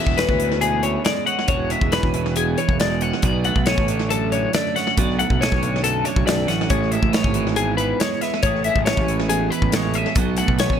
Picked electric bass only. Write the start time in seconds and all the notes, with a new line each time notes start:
0.07 E1
0.29 D2
1.48 E1
1.81 E1
2.03 E1
2.68 E1
3.24 B1
3.56 B1
3.78 A1
4.98 B1
5.30 B1
5.52 B1
6.16 B1
6.26 B1
6.49 A1
6.70 A1
7.02 A1
7.24 G#1
8.43 A1
8.76 A1
8.98 A1
9.62 A1
10.16 B1
10.49 B1
10.70 A1